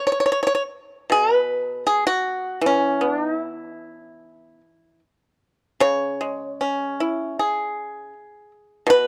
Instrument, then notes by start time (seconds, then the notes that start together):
pipa
0.07 C#5
0.12 C#5
0.20 C#5
0.26 C#5
0.32 C#5
0.43 C#5
0.47 C#5
0.55 C#5
1.10 B2 G#4
1.35 B4
1.87 G#4
2.07 F#4
2.61 E3
2.66 C#4
3.01 B3 D4
3.21 D#4
3.39 E4
5.80 C#3 C#5
6.21 G#3
6.61 C#4
7.00 E4
7.39 G#4
8.87 B2 B4